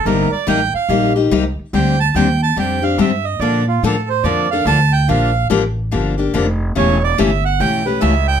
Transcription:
X:1
M:4/4
L:1/8
Q:"Swing" 1/4=143
K:Gm
V:1 name="Accordion"
B d g f2 z3 | g a g a g f =e _e | d F A c d f a g | f2 z6 |
^c d =e ^f g =B e g |]
V:2 name="Steel-string acoustic guitar"
[C,G,B,EG] z [C,G,B,EG] z [C,G,B,EG] [B,EG] [C,G,B,EG] z | [D,G,CDG] z [D,G,CDG] z [D,G,CDG] [CDG] [D,G,CDG] z | [D,F,B,DA] z [D,F,B,DA] z [D,F,B,DA] [B,DA] [D,F,B,DA] z | [D,F,B,DG] z [D,F,B,DG] z [D,F,B,DG] [B,DG] [D,F,B,DG] z |
[^C,=E,A,^CG] z [C,E,A,CG] z [C,E,A,CG] [A,CG] [C,E,A,CG] z |]
V:3 name="Upright bass" clef=bass
G,,, z A,,, z B,,,2 C,, z | D,,2 E,,2 F,,2 G,,2 | B,,2 A,,2 F,,2 D,,2 | B,,,2 A,,,2 G,,,2 F,,,2 |
=E,,,2 G,,,2 =B,,,2 ^C,,2 |]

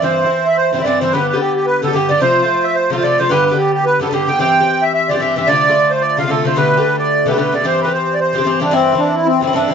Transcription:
X:1
M:4/4
L:1/16
Q:"Swing" 1/4=221
K:C
V:1 name="Accordion"
c6 e2 c2 c3/2 e/2 d2 c2 | B2 B2 G2 G2 B2 A2 G2 d2 | c6 e2 c2 c2 d2 c2 | B2 B2 G2 G2 B2 A2 G2 g2 |
g6 e2 e2 d2 e2 e2 | d6 c2 d2 f2 A2 c2 | B6 d4 B2 B2 d2 | c2 B2 c3 d c6 D2 |
C4 D2 E2 C2 C2 D2 C2 |]
V:2 name="Bouzouki"
[G,,E,CE]3 [E,CE]6- [E,CE] [G,,E,CE] [E,CE] [G,,E,CE]2 [G,,E,CE]2 | [G,,D,B,G]3 [D,B,G]6- [D,B,G] [G,,D,B,G] [D,B,G] [G,,D,B,G]2 [G,,D,B,G]2 | [C,F,A,F]3 [F,A,F]6- [F,A,F] [C,F,A,F] [F,A,F] [C,F,A,F]2 [C,F,A,F]2 | [G,,D,B,G]3 [D,B,G]6- [D,B,G] [G,,D,B,G] [D,B,G] [G,,D,B,G]2 [G,,D,B,G]2 |
[G,,E,CG]3 [E,CG]6- [E,CG] [G,,E,CG] [E,CG] [G,,E,CG]2 [G,,E,CG]2 | [C,D,A,F]3 [D,A,F]6- [D,A,F] [C,D,A,F] [D,A,F] [C,D,A,F]2 [C,D,A,F]2 | [B,,D,A,G]3 [D,A,G]6- [D,A,G] [B,,D,A,G] [D,A,G] [B,,D,A,G]2 [B,,D,A,G]2 | [G,,E,CG]3 [E,CG]6- [E,CG] [G,,E,CG] [E,CG] [G,,E,CG]2 [G,,E,CG]2 |
[G,,E,CE]3 [E,CE]6- [E,CE] [G,,E,CE] [E,CE] [G,,E,CE]2 [G,,E,CE]2 |]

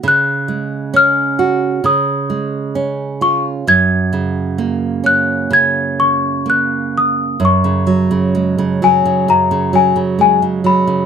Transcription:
X:1
M:4/4
L:1/16
Q:1/4=65
K:F#
V:1 name="Celesta"
f'4 e'4 d'4 z2 c'2 | g'6 f'2 g'2 c'2 f'2 d'2 | c'6 g2 a2 g2 g2 b2 |]
V:2 name="Nylon-string guitar" clef=bass
C,2 G,2 C2 F2 C,2 G,2 C2 E2 | F,,2 C,2 A,2 C2 C,4 A,4 | F,, C, F, C, G, C, F, C, F,, C, F, C, G, C, F, C, |]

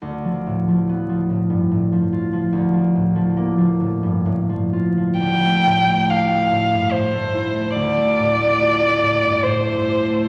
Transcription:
X:1
M:3/4
L:1/16
Q:1/4=71
K:Dm
V:1 name="Violin"
z12 | z12 | g4 f4 c4 | d8 c4 |]
V:2 name="Harp" clef=bass
D,, F, A,, F, =B, F, A,, G,, A,, F, F F, | D,, F, A,, F, B, F, A,, G,, A,, F, F F, | D,, A, A,, A, D A, A,, G,, A,, A, E A, | D,, A, A,, A, F A, A,, G,, A,, A, G A, |]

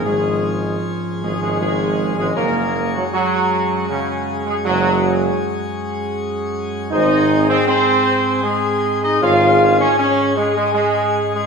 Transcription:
X:1
M:3/4
L:1/16
Q:1/4=79
K:Db
V:1 name="French horn section"
A,4 z2 A, A, A,3 A, | [Ad]2 z8 z2 | [Ad]2 z8 z2 | [Ac]2 z8 z2 |
[Ad]2 z8 z2 |]
V:2 name="Trumpet section"
A4 z2 A A A3 A | B3 G G4 D3 A | G4 z8 | e3 c c4 A3 e |
f3 d d2 A A A3 A |]
V:3 name="Pipe organ"
[A,,F,DA]12 | [G,,A,DA]12- | [G,,A,DA]12 | [A,,A,CA]12 |
[A,,A,DA]12 |]
V:4 name="Trombone section" clef=bass
A,4 z2 A, A, A,3 A, | B,3 G, G,4 D,3 A, | G,4 z8 | E3 C C4 A,3 E |
F3 D D2 A, A, A,3 A, |]
V:5 name="Tuba" clef=bass
A,,,4 z2 A,,, A,,, A,,,3 A,,, | G,,,4 z8 | G,,,4 z8 | A,,,4 z8 |
A,,,4 z8 |]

